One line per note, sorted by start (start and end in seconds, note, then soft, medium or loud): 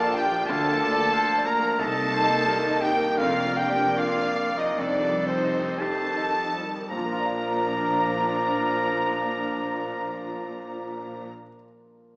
0.00 0.43 A#1 medium
0.00 0.15 F3 medium
0.00 0.48 F3 medium
0.00 0.26 A#3 medium
0.00 1.80 D4 medium
0.00 1.79 F4 medium
0.00 0.16 A4 loud
0.00 0.18 A#4 medium
0.00 0.04 D5 medium
0.00 0.48 D5 loud
0.00 0.39 D5 medium
0.00 0.13 A5 loud
0.00 0.16 A5 loud
0.00 0.16 A5 medium
0.14 0.31 D3 medium
0.14 0.48 G4 loud
0.14 0.48 G5 loud
0.14 0.47 G5 medium
0.14 0.48 G5 loud
0.18 0.49 G5 medium
0.26 0.48 A#3 medium
0.30 0.47 F3 medium
0.46 1.02 D2 loud
0.46 1.76 D2 medium
0.46 1.02 D3 medium
0.46 0.63 D3 medium
0.46 4.62 A#3 medium
0.46 1.46 A4 loud
0.46 0.82 F5 medium
0.46 1.45 A5 loud
0.46 1.47 A5 loud
0.46 1.45 A5 loud
0.63 0.80 F3 medium
0.70 1.05 A#3 medium
0.78 0.95 A#3 medium
0.78 1.14 D5 medium
0.92 1.27 D5 medium
0.96 1.13 F3 medium
1.12 1.29 D3 medium
1.12 1.49 A#4 medium
1.12 1.48 C5 medium
1.28 1.46 F3 medium
1.38 1.72 D5 medium
1.45 1.63 A#3 medium
1.45 1.81 A#4 medium
1.45 1.79 A#4 loud
1.45 1.79 A#5 loud
1.45 1.81 A#5 loud
1.45 1.80 A#5 loud
1.60 1.78 F3 medium
1.60 1.81 A#3 medium
1.77 2.35 C2 loud
1.77 3.15 C2 medium
1.77 1.94 C3 medium
1.77 2.35 C3 medium
1.77 3.18 D#4 loud
1.77 3.19 D#4 medium
1.77 2.80 A4 loud
1.77 2.15 D#5 loud
1.77 2.82 A5 loud
1.77 2.83 A5 loud
1.77 2.57 A5 loud
1.93 2.11 D#3 medium
2.02 2.38 A#3 medium
2.10 2.28 G3 medium
2.14 2.88 C5 medium
2.24 2.61 D#5 medium
2.28 2.46 A#3 medium
2.45 2.63 G3 medium
2.45 2.85 A#4 medium
2.62 2.81 D#3 medium
2.71 3.09 D#5 medium
2.80 2.99 C3 medium
2.80 3.18 G4 loud
2.80 3.19 G5 loud
2.80 3.20 G5 medium
2.97 3.18 D#3 medium
2.97 3.20 A#3 medium
3.17 3.84 F1 loud
3.17 3.84 F2 loud
3.17 4.76 F2 loud
3.17 3.35 D3 medium
3.17 4.78 D4 medium
3.17 4.62 D4 medium
3.17 3.57 F4 loud
3.17 3.99 A#4 medium
3.17 3.59 F5 loud
3.17 3.56 F5 medium
3.17 3.56 F5 loud
3.17 3.57 F5 medium
3.36 3.57 F3 medium
3.46 3.87 A#3 medium
3.55 3.76 A#3 medium
3.55 3.97 G4 loud
3.55 3.97 G5 loud
3.55 3.97 G5 medium
3.55 3.97 G5 loud
3.59 3.98 G5 loud
3.70 4.12 D5 medium
3.75 3.96 F3 medium
3.96 4.16 D3 medium
3.96 4.58 F4 loud
3.96 4.40 A#4 medium
3.96 4.82 D5 loud
3.96 4.57 F5 loud
3.96 4.59 F5 loud
3.96 4.58 F5 medium
3.96 4.58 F5 loud
4.15 4.36 F3 medium
4.23 4.67 D5 medium
4.36 4.57 A#3 medium
4.50 4.79 A#3 medium
4.56 4.79 F3 medium
4.56 4.79 D#4 medium
4.56 4.78 D#5 medium
4.56 4.79 D#5 medium
4.56 4.80 D#5 medium
4.77 5.63 F1 loud
4.77 6.86 F2 medium
4.77 5.63 F2 medium
4.77 5.00 C3 medium
4.77 6.35 G3 medium
4.77 5.27 D4 medium
4.77 6.54 D#4 medium
4.77 6.35 D#4 medium
4.77 5.84 A4 medium
4.77 5.26 D5 medium
4.77 5.28 D5 loud
4.77 5.27 D5 medium
4.77 5.27 D5 loud
5.01 5.27 D#3 medium
5.09 5.66 G3 medium
5.26 5.53 F3 medium
5.26 5.81 C4 medium
5.26 5.81 C5 loud
5.26 5.79 C5 medium
5.26 5.81 C5 medium
5.44 6.02 D#5 medium
5.52 5.80 D#3 medium
5.79 6.07 C3 medium
5.79 6.40 G4 medium
5.79 6.74 A4 medium
5.79 6.37 C5 medium
5.79 6.90 A5 loud
5.79 6.73 A5 loud
5.79 6.90 A5 medium
5.79 6.90 A5 loud
6.06 6.35 D#3 medium
6.17 6.77 D#5 medium
6.35 6.64 F3 medium
6.54 6.91 G3 medium
6.63 6.90 D#3 medium
6.90 11.27 A#1 medium
6.90 11.27 A#2 medium
6.90 11.26 F3 medium
6.90 11.27 F3 medium
6.90 11.28 F3 medium
6.90 11.27 D4 medium
6.90 11.28 A#4 medium
6.90 11.27 A#5 medium
6.90 11.27 A#5 loud
6.90 11.27 A#5 medium
6.90 11.30 A#5 medium
6.94 11.34 F3 medium
6.94 11.31 D5 medium
7.05 11.42 A#3 medium
7.12 11.49 F4 medium
7.19 11.56 D5 medium
7.26 11.62 F5 medium